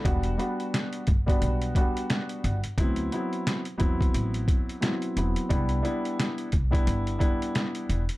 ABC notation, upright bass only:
X:1
M:4/4
L:1/16
Q:"Swing 16ths" 1/4=88
K:Em
V:1 name="Upright bass" clef=bass
E,,,2 z4 G,,,2 B,,,2 z4 G,,, z | D,,2 z4 E,,2 A,,,2 z4 E,,, z | C,,2 z4 C,,2 G,,,2 z4 E,,, z |]